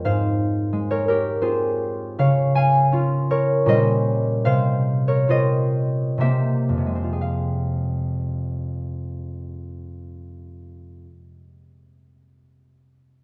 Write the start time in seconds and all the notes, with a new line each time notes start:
Already playing: G#3 C4 F4 D#5 G#5
0.05 G#2 C5 F5
0.73 G#3
0.91 A#4 C#5
1.08 G4 A#4
1.41 C4 F4 G#4 C5
2.19 C#3 C#5 F5
2.55 F5 G#5
2.92 C#4 F4
3.31 A#4 C#5
3.66 A#2 G3 C#4 G4 C5 D#5
4.45 C3 C5 F5
5.08 A#4 C#5
5.28 C4 F4 C5 D#5
6.18 C3 A#3 G4 C5 E5
6.22 C4
6.69 F2
6.78 C3
6.86 G#3
6.95 C4
7.04 F4
7.13 G#4
7.21 F5